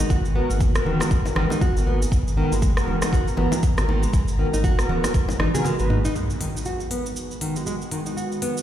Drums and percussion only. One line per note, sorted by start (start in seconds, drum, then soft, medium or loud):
0.10 kick loud
0.10 cabasa medium
0.25 cabasa soft
0.50 high conga medium
0.50 cabasa medium
0.60 kick loud
0.60 high conga loud
0.60 cabasa medium
0.75 cross-stick medium
0.75 cabasa soft
0.86 low conga medium
1.00 cross-stick medium
1.00 high bongo medium
1.00 high conga medium
1.00 cabasa medium
1.11 kick loud
1.11 cabasa medium
1.25 high bongo medium
1.25 cabasa soft
1.36 cross-stick medium
1.36 low bongo medium
1.36 low conga loud
1.50 low bongo medium
1.50 cabasa medium
1.61 kick loud
1.61 low bongo medium
1.61 cabasa medium
1.77 cabasa soft
1.87 high conga medium
2.02 cabasa medium
2.12 kick loud
2.12 cabasa medium
2.28 cabasa soft
2.52 high conga medium
2.52 cabasa medium
2.62 kick medium
2.62 high conga loud
2.62 cabasa medium
2.77 cross-stick medium
2.77 cabasa soft
2.88 low conga medium
3.02 cross-stick medium
3.02 high bongo medium
3.02 high conga soft
3.02 cabasa medium
3.13 kick loud
3.13 cabasa medium
3.28 cabasa soft
3.37 high bongo medium
3.37 low bongo medium
3.37 low conga loud
3.52 high bongo loud
3.52 high conga medium
3.52 cabasa medium
3.63 kick loud
3.63 cabasa medium
3.77 cross-stick medium
3.77 low bongo medium
3.77 cabasa soft
3.89 high bongo medium
3.89 high conga medium
4.03 cabasa medium
4.13 kick loud
4.13 cabasa medium
4.28 cabasa soft
4.54 low bongo medium
4.54 high conga medium
4.54 cabasa medium
4.64 kick loud
4.64 high conga medium
4.64 cabasa medium
4.79 cross-stick medium
4.79 cabasa soft
4.89 high conga medium
4.89 low conga loud
5.04 cross-stick medium
5.04 high bongo medium
5.04 high conga medium
5.04 cabasa medium
5.14 kick loud
5.14 high tom medium
5.14 cabasa medium
5.29 high tom medium
5.29 high bongo loud
5.29 cabasa soft
5.40 cross-stick medium
5.40 low bongo medium
5.40 low conga loud
5.55 mid tom medium
5.55 low bongo medium
5.55 cabasa medium
5.65 mid tom medium
5.65 low bongo medium
5.65 cabasa medium
5.79 cabasa soft
5.90 mid tom loud
5.90 high conga medium
6.05 mid tom medium
6.05 cabasa medium
6.16 cabasa medium
6.30 cabasa soft
6.41 open hi-hat medium
6.57 cabasa medium
6.65 cabasa medium
6.80 cabasa soft
6.91 open hi-hat medium
7.06 cabasa medium
7.16 cabasa medium
7.31 cabasa soft
7.41 open hi-hat medium
7.56 cabasa medium
7.67 cabasa medium
7.81 cabasa soft
7.91 open hi-hat medium
8.06 cabasa medium
8.17 cabasa medium
8.32 cabasa soft
8.42 open hi-hat medium
8.57 cabasa medium